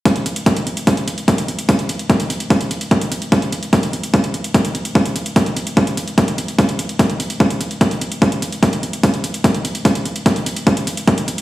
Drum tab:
HH |xxxxxxxxxxxxxxxx|xxxxxxxxxxxxxxxx|xxxxxxxxxxxxxxxx|xxxxxxxxxxxxxxxx|
BD |o---o---o---o---|o---o---o---o---|o---o---o---o---|o---o---o---o---|

HH |xxxxxxxxxxxxxxxx|xxxxxxxxxxxxxxxx|xxxxxxxxxxxxxxxx|
BD |o---o---o---o---|o---o---o---o---|o---o---o---o---|